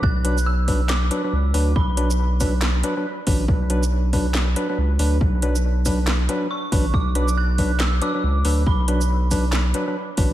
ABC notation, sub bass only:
X:1
M:4/4
L:1/8
Q:"Swing 16ths" 1/4=139
K:Bm
V:1 name="Sub bass" clef=bass
B,,,4- B,,, z C,, D,, | B,,,4- B,,, z2 A,,, | B,,,4- B,,, z C,, D,, | B,,,4- B,,, z2 A,,, |
B,,,4- B,,, z C,, D,, | B,,,4- B,,, z2 A,,, |]